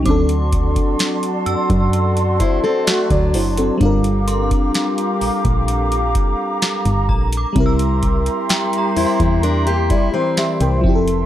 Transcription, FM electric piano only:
\new Staff \with { instrumentName = "FM electric piano" } { \time 4/4 \key c \mixolydian \tempo 4 = 64 << { r2. r16 <fis' d''>16 <e' c''>16 <c' a'>16~ | <c' a'>16 r2. r8. | r2 r8 d''16 <e' c''>16 <g' e''>16 <bes' g''>8 r16 | } \\ { <fis c' d' a'>1 | <g d' f' bes'>1 | <g c' e' bes'>2.~ <g c' e' bes'>8 <f c' e' g' a'>8 | } >> }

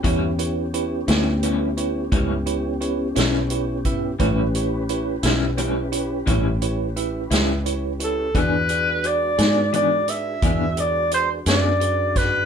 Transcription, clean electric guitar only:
\new Staff \with { instrumentName = "Clean electric guitar" } { \time 12/8 \key a \mixolydian \tempo 4. = 58 <a, g cis' e'>8 r4 <g cis' e'>8 <a, g cis' e'>8 r8 <a, g cis' e'>8 r4 <g cis' e'>8 r4 | <a, g cis' e'>8 r4 <g cis' e'>8 <a, g cis' e'>8 r8 <a, g cis' e'>8 r4 <g cis' e'>8 r4 | <e b d' gis'>8 r4 <b d' gis'>8 <e b d' gis'>8 r8 <e b d' gis'>8 r4 <b d' gis'>8 r4 | }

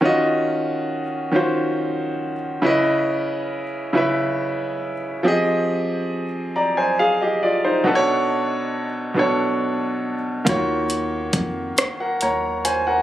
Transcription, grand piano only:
\new Staff \with { instrumentName = "Grand piano" } { \time 6/8 \key f \phrygian \tempo 4. = 46 << { r2. | r2. | r4. <d'' bes''>16 <c'' aes''>16 <aes' f''>16 <g' ees''>16 <f' d''>16 <ees' c''>16~ | <ees' c''>16 r2 r8. |
r4. r16 <bes' ges''>16 <des'' bes''>8 <c'' aes''>16 <bes' ges''>16 | } \\ { <ees des' f' ges' ees''>4 r8 <ees des' f' ges' c''>4 r8 | <des des' fes' ces'' ees''>4 r8 <des des' fes' ces'' fes''>4 r8 | <f c' g' aes' ees''>4 r2 | <b, b d' a' b' cis''>4 r8 <b, b d' a' cis''>4 r8 |
<ees bes f' ges' des''>4 r2 | } >> }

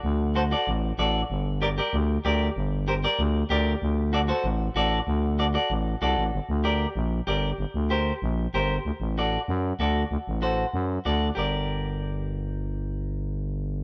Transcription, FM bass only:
\new Staff \with { instrumentName = "FM bass" } { \clef bass \time 4/4 \key g \minor \tempo 4 = 191 d,2 a,,4 a,,4 | g,,2 d,4 d,4 | g,,2 d,4 d,4 | d,2 a,,4 a,,4 |
d,2 a,,4 c,8 a,,8 | g,,16 r16 d,4. bes,,4 g,,4 | g,,16 r16 d,4. bes,,4 g,,4 | d,16 r16 a,,4. fis,4 d,4 |
d,16 r16 a,,4. fis,4 d,4 | g,,1~ | g,,1 | }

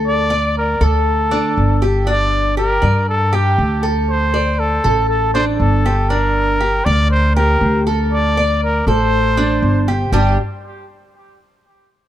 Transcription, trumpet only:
\new Staff \with { instrumentName = "Trumpet" } { \time 4/4 \key g \minor \tempo 4 = 119 d''4 bes'8 a'2 r8 | d''4 bes'4 a'8 g'4 r8 | c''4 a'4 a'8 c''8 a'4 | bes'4. d''8 c''8 bes'4 r8 |
d''4 bes'8 c''2 r8 | g'8 r2. r8 | }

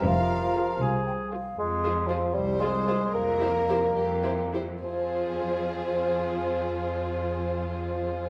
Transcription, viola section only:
\new Staff \with { instrumentName = "Viola section" } { \time 6/8 \key f \minor \tempo 4. = 71 r4 <f' aes'>8 r4 <f' aes'>8 | r8 <f' aes'>8 <f' aes'>8 r8 <f' aes'>8 <f' aes'>8 | r8 <e' g'>8 <e' g'>8 r8 <e' g'>8 <e' g'>8 | f'2.~ |
f'2. | }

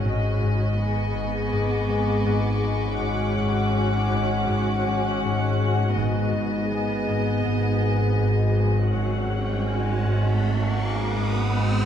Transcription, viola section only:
\new Staff \with { instrumentName = "Viola section" } { \time 4/4 \key gis \minor \tempo 4 = 81 << { fis'4 gis'2. | fis'1~ | fis'4 gis'2. | fis'2.~ fis'8 r8 | } \\ { cis'4 b2. | cis'1 | b1 | cis'2.~ cis'8 r8 | } >> }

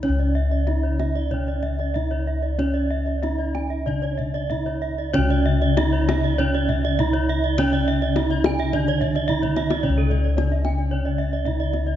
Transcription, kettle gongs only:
<<
  \new Staff \with { instrumentName = "Kettle gongs" } { \time 4/4 \tempo 4 = 98 << { r4 d'8 r4. d'8 r8 | r4 d'8 r4. d'8 r8 | r4 d'8 r4. d'8 r8 | r4 d'8 r4. d'8 r8 |
r4 d'8 r4. d'8 r8 | } \\ { cis'2. r4 | cis'2. r4 | cis'2. r4 | cis'2. r4 |
cis'2. r4 | } >> }
  \new Staff \with { instrumentName = "Kettle gongs" } { \clef bass \time 4/4 << { cis4 r2. | r2 cis2~ | cis4 r2. | r2 cis2~ |
cis4 r2. | } \\ { cis,1~ | cis,2 r2 | cis,1~ | cis,2 r2 |
cis,1 | } >> }
>>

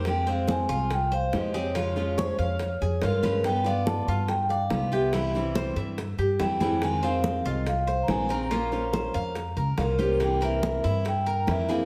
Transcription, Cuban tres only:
\new Staff \with { instrumentName = "Cuban tres" } { \time 4/4 \key f \minor \tempo 4 = 142 r8 c''4 f'4 c''4 aes'8 | f'4 des''8 f''4 aes'8 f''8 b'8~ | b'8 d''4 f'4 d''4 g'8 | e'4 c''8 e''4 g'8 e''8 aes'8~ |
aes'8 c''4 f'4 c''4 bes'8 | f'4 c''8 f''4 bes'8 f''8 g'8~ | g'8 bes'4 e'4 bes'4 aes'8 | }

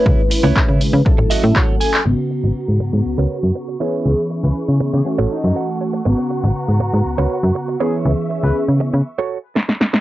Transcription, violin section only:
\new Staff \with { instrumentName = "Violin section" } { \time 4/4 \key gis \phrygian \tempo 4 = 120 << { r1 | cis'''1~ | cis'''1~ | cis'''1~ |
cis'''2 r2 | } \\ { r1 | <fis'' ais''>2.~ <fis'' ais''>8 e'8~ | e'2 <a' fis''>2 | ais''2.~ ais''8 e''8~ |
e''2 r2 | } >> }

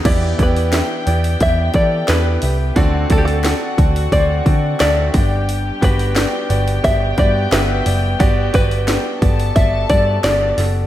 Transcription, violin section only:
\new Staff \with { instrumentName = "Violin section" } { \time 4/4 \key g \major \tempo 4 = 88 <g' g''>1 | <fis' fis''>2.~ <fis' fis''>8 <g' g''>8~ | <g' g''>1~ | <g' g''>4. <a' a''>2 r8 | }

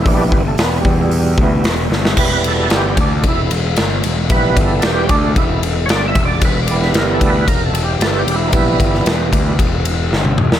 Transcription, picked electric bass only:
\new Staff \with { instrumentName = "Picked electric bass" } { \clef bass \time 4/4 \key e \minor \tempo 4 = 113 ais,,8 g,,8 e,,8 e,4 d,8 e,,8 g,,8 | e,,4 g,,8 d,8 e,,8 e,,8 g,,8 e,,8 | ais,,8 g,,8 e,,8 d,8 e,,4 g,,8 e,,8 | e,,4 g,,8 d,8 e,,8 e,,8 g,,8 e,,8 |
ais,,8 g,,8 e,,8 d,8 e,,4 g,,8 e,,8 | }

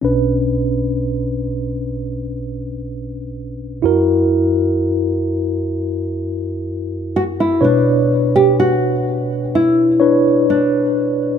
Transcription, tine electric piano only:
<<
  \new Staff \with { instrumentName = "Tine electric piano" } { \time 4/4 \key b \minor \tempo 4 = 63 <cis' d' b'>1 | <e' fis' ais'>1 | <d' b' cis''>2 r8 <d' b' cis''>4. | }
  \new Staff \with { instrumentName = "Tine electric piano" } { \clef bass \time 4/4 \key b \minor <b,, b,>1 | fis,1 | b,4. r2 r8 | }
>>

